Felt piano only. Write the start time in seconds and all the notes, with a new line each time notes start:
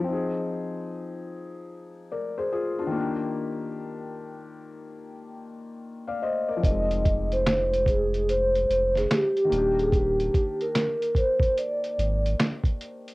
0.00 F3 C4
0.08 D#4
0.13 G#4
2.12 A#4 D5
2.38 G#4 C5
2.52 F4 G#4
2.79 D4 F4
2.87 D#3
2.91 A#3
2.96 D4
3.00 G4
6.07 D5 F5
6.22 C5 D#5
6.48 A#4 D5
6.57 F3
6.61 C4
6.66 D#4
6.70 G#3
9.45 D#3
9.49 A#3
9.53 D4
9.58 G4